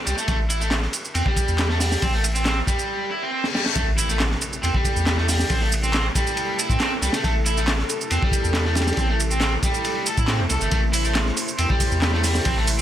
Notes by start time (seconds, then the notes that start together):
0.06 C2 G3, ride, shaker
0.18 A3, shaker
0.28 A1 A3, kick, ride, shaker
0.50 E4, ride, shaker
0.61 A3, shaker
0.71 snare, clap, ride, shaker
0.82 snare
0.93 ride, shaker
1.05 shaker
1.15 E2 C4, ride, shaker
1.26 G3, kick
1.36 kick, ride, shaker
1.48 E2, shaker
1.58 snare, clap, ride, shaker
1.70 A3, snare
1.80 G3, snare, open hi-hat, shaker
1.92 snare, shaker
2.02 A1 C4, kick, ride, shaker
2.14 A3
2.24 ride, shaker
2.35 C4, shaker
2.45 C4, snare, clap, ride, shaker
2.67 G3, kick, ride, shaker
2.79 ride, shaker
2.89 reverse cymbal
3.11 E4
3.22 C4
3.32 C4
3.44 snare
3.54 G3, snare
3.66 A3, snare
3.76 A1 C3 A3 E4 A4, kick, ride, impact, shaker
3.98 E4, ride, shaker
4.09 A3, shaker
4.20 snare, clap, ride, shaker
4.32 snare
4.42 ride, shaker
4.53 shaker
4.63 E2 C4, ride, shaker
4.74 G3, kick
4.85 kick, ride, shaker
4.96 E2, shaker
5.06 snare, clap, ride, shaker
5.18 A3, snare
5.29 G3, snare, open hi-hat, shaker
5.40 snare, shaker
5.50 A1 C4, kick, ride, shaker
5.62 A3
5.72 ride, shaker
5.83 C4, shaker
5.93 C4, snare, clap, ride, shaker
6.15 G3, kick, ride, shaker
6.27 ride, shaker
6.37 ride, shaker
6.59 E4, ride, shaker
6.70 A2 C4, kick, shaker
6.80 C4, snare, clap, ride, shaker
7.02 C2 G3, snare, ride, shaker
7.13 A3, snare, ride, shaker
7.24 A1 A3, kick, ride, shaker
7.46 E4, ride, shaker
7.57 A3, shaker
7.68 snare, clap, ride, shaker
7.79 snare
7.90 ride, shaker
8.01 shaker
8.11 E2 C4, ride, shaker
8.23 G3, kick
8.32 kick, ride, shaker
8.44 E2, shaker
8.54 snare, clap, ride, shaker
8.65 A3, snare
8.75 G3, snare, ride, shaker
8.81 snare, ride
8.87 snare, ride, shaker
8.92 snare, ride
8.97 A1 C4, kick, ride, shaker
9.09 A3
9.20 ride, shaker
9.31 C4, shaker
9.40 C4, snare, clap, ride, shaker
9.63 G3, kick, ride, shaker
9.74 ride, shaker
9.85 ride, shaker
10.06 A4, ride, shaker
10.18 A2 E4, kick, shaker
10.28 C4, snare, clap, ride, shaker
10.40 E2
10.50 C2 A4, snare, ride, shaker
10.61 G1 A3, shaker
10.71 A1 A3 C5, kick, ride, shaker
10.93 E4, open hi-hat, ride, shaker
11.05 A3, shaker
11.15 snare, clap, ride, shaker
11.26 snare
11.37 open hi-hat, ride, shaker
11.48 shaker
11.58 E2 C4, ride, shaker
11.70 G3, kick
11.80 kick, open hi-hat, ride, shaker
11.92 E2, shaker
12.02 snare, clap, ride, shaker
12.13 A3, snare
12.24 G3, snare, open hi-hat, shaker
12.35 snare, shaker
12.45 A1 C4, kick, ride, shaker
12.57 A3
12.67 open hi-hat, ride, shaker